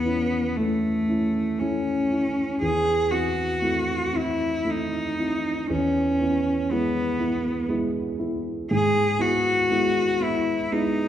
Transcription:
Already playing: E2 B3
0.05 C#4 E4
0.57 A3 C#4 E4
1.09 C#4 E4
1.59 A3 C#4 E4
2.11 C#4 E4
2.62 E2 G#4
3.11 C4 E4 F#4
3.62 A3 C4 E4
4.13 C4 E4
4.65 A3 C4 E4
4.70 D#4
5.18 C4 E4
5.70 E2 C#4
6.21 B3 E4
6.71 G#3 B3 E4
7.19 B3 E4
7.69 G#3 B3 E4
8.19 B3 E4
8.71 G#2 G#4
9.19 B3 E4 F#4
9.71 G#3 B3 E4
10.20 B3 E4
10.72 G#3 B3 D#4 E4

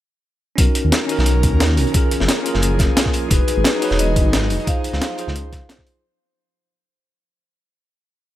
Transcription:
0.56 B1 D#3 C#4 D#4 F#4 A#4, kick, closed hi-hat
0.61 A#4
0.75 closed hi-hat
0.84 D#2
0.92 snare, closed hi-hat
1.07 C#4 D#4 F#4, closed hi-hat, open hi-hat
1.12 A#4
1.18 B1, snare
1.26 closed hi-hat
1.43 kick, closed hi-hat
1.53 D#2
1.60 snare, closed hi-hat
1.69 snare
1.77 B1, closed hi-hat, open hi-hat
1.87 closed hi-hat
1.92 F3 A#3 C#4 F4 G#4, kick, closed hi-hat
1.97 A#4
2.11 closed hi-hat
2.20 F#1, snare
2.28 snare, closed hi-hat
2.43 C#4 F4 G#4, closed hi-hat
2.48 A#4
2.54 F#1, snare
2.62 closed hi-hat
2.79 kick, snare, closed hi-hat
2.97 snare, closed hi-hat
3.06 kick, snare
3.13 closed hi-hat, open hi-hat
3.29 E1 F#3 D#4 F#4 G#4 B4, kick, closed hi-hat
3.34 B4
3.48 closed hi-hat
3.57 G#1
3.64 snare, closed hi-hat
3.79 D#4 F#4 G#4 C#5, closed hi-hat, open hi-hat
3.85 B4
3.91 E1, snare
3.99 D#5, closed hi-hat
4.16 kick, closed hi-hat
4.25 G#1
4.33 snare, closed hi-hat
4.42 snare
4.50 E1, closed hi-hat, open hi-hat
4.60 closed hi-hat
4.65 F3 D#4 F4 G#4 C5 F5, kick, closed hi-hat
4.70 C5
4.84 closed hi-hat
4.93 C#2, snare
5.01 snare, closed hi-hat
5.16 D#4 F4 G#4, closed hi-hat
5.21 C5
5.27 C#2, snare
5.36 closed hi-hat
5.52 kick, snare, closed hi-hat
5.69 snare, closed hi-hat
5.78 kick, snare
5.87 open hi-hat

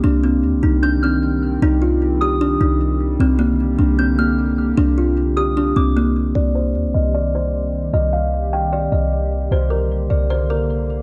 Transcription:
Already playing: G4
0.04 C2 D#3 G3 C4 D4
0.24 C4
0.43 D#2
0.53 C2
0.63 C2 D#4
0.83 D4 G6
1.03 C4 F6
1.62 C2 D#4
1.82 F4
2.21 G4 D#6
2.41 D4
2.61 C2 D#4
3.20 C2 D3 A#3 C4 G4
3.39 A#3
3.79 C2 D4
3.99 C4 G6
4.19 A#3 F6
4.77 C2 D4
4.98 F4
5.37 G4 D#6
5.57 D4
5.76 C2 C4 D6
5.97 A#3
6.35 C2 D#3 G3 C4 G4 D5
6.55 C5
6.75 D#2
6.85 C2
6.94 C2 D#5
7.15 D5
7.35 C5
7.93 C2 D#5
8.13 F5
8.53 G5
8.73 D5
8.92 C2 D#5
9.51 C2 D3 A#3 C5
9.70 A#4
10.10 C2 D5
10.30 C5
10.50 A#4

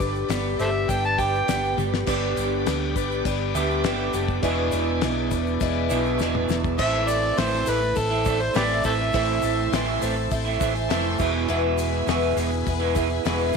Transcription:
Already playing: G1 G2 D4 G4 B4 D5
0.00 D3 D4 G4 B4, kick, open hi-hat, shaker
0.15 shaker
0.29 G1 G3 B3 D4 G4 B4, snare, open hi-hat, shaker
0.59 G1 G3 A4 C5 E5, open hi-hat, shaker
0.88 G1 G3 D4 G4 B4 G5, kick, open hi-hat, shaker
1.04 A5, shaker
1.18 D4 G4 B4 D5 G5, kick, open hi-hat, shaker
1.34 shaker
1.48 G1 G3 B3 D4 G4 B4, snare, open hi-hat, shaker
1.64 shaker
1.77 G1 G3 D4 G4 B4, high tom, shaker
1.94 snare, shaker
2.06 G1 G2 D3 G3 B3 D4 G4 B4 D5, kick, crash, shaker
2.37 G1, crash, shaker
2.66 D2 G3 D4 G4 B4, snare, crash, shaker
2.95 G1 D4 G4 B4, kick, crash, shaker
3.12 shaker
3.25 G1 G3 D4 G4 B4, kick, crash, shaker
3.55 D2 G2 D3 G3 B3 D4 G4 B4 E5, crash, shaker
3.70 shaker
3.83 G1 G2 D3 G3 B3 D4 G4 B4, snare, crash, shaker
4.13 F#1 D4 G4 B4, crash, shaker
4.28 kick, shaker
4.42 E1 E2 B2 E3 G#3 B3 D4 E4 G#4 B4 D5, kick, crash, shaker
4.72 E1, crash, shaker
5.01 B1 G#3 D4 E4 B4, snare, crash, shaker
5.31 E1 D4 E4 B4, kick, crash, shaker
5.46 shaker
5.60 E1 E3 G#3 D4 E4 B4, kick, crash, shaker
5.89 B1 E2 B2 E3 B3 D4 E4 G#4 B4 D5, crash, shaker
6.05 shaker
6.19 E1 E2 B2 E3 G#3 B3 D4 E4 G#4 B4, snare, shaker
6.35 mid tom
6.49 E1 D4 E4 B4, snare, shaker
6.64 kick, shaker
6.78 A1 A2 E3 A3 C4 E4 A4 C5 E5, kick, crash, shaker
6.93 A3 C4 E4
7.08 A3 C4 E4 A4 D5, open hi-hat, shaker
7.37 A1 A2 E3 A3 C4 E4 A4 C5, snare, open hi-hat, shaker
7.54 snare
7.66 A1 E3 A3 C4 E4 A4 B4, open hi-hat, shaker
7.81 muted clean electric guitar stroke, shaker
7.95 A1 A3 C4 E4 A4, kick, open hi-hat, shaker
8.10 A3 C4 E4
8.25 E3 A3 C4 E4 A4 C5 D5, kick, open hi-hat, shaker
8.40 C5, muted clean electric guitar stroke, shaker
8.54 A1 A2 E3 A3 C4 E4 G4 A4 B4 D5, snare, open hi-hat, shaker
8.83 A1 E3 A3 C4 E4 A4 C5 E5, kick, open hi-hat, shaker
8.98 A3 C4 E4
9.13 A1 A2 E3 A3 C4 E4 A4 C5 E5, kick, open hi-hat, shaker
9.27 A3 C4 E4
9.42 A1 C4 E4 A4, open hi-hat, shaker
9.46 A3
9.71 A1 A2 E3 A3 C4 E4 A4, snare, open hi-hat, shaker
10.00 A1 E3 A3 C4 E4 A4 C5, open hi-hat, shaker
10.04 A3 C4
10.16 muted clean electric guitar stroke, shaker
10.31 A1 A3 C4 E4 A4 E5, kick, open hi-hat, shaker
10.45 A3 C4 E4
10.60 A1 E3 A3 C4 E4 A4 C5 E5, kick, open hi-hat, shaker
10.75 G#5, muted clean electric guitar stroke, shaker
10.89 F1 A2 E3 A3 C4 E4 A4 A5, snare, open hi-hat, shaker
11.18 E1 E2 B2 E3 G#3 B3 E4 G#4 B4 E5 B5, kick, crash, shaker
11.22 E4
11.32 E3 G#3 B3 E4
11.48 E1 E2 B2 E3 G#3 B3 E4 G#4 B4, shaker
11.63 E3 G#3 B3 E4
11.78 E4 G#4 B4, open hi-hat, shaker
12.06 E1 E2 B2 E3 G#3 B3 E4 G#4 B4, snare, open hi-hat, shaker
12.36 E1 E3 G#3 B3 E4 G#4 B4, open hi-hat, shaker
12.51 muted clean electric guitar stroke, shaker
12.66 E1 B3 E4 G#4 B4, kick, open hi-hat, shaker
12.80 E3 G#3 B3 E4
12.95 E3 G#3 B3 E4 G#4 B4 E5, kick, open hi-hat, shaker
13.09 muted clean electric guitar stroke, shaker
13.24 E1 E2 B2 E3 G#3 B3 E4 G#4 B4, snare, open hi-hat, shaker
13.53 E3, shaker

